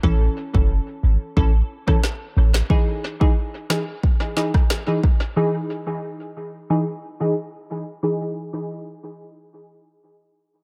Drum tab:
SD |-----------ro--o|------o---oro---|----------------|----------------|
BD |o--o----o--o----|o--o----o--o--o-|----------------|----------------|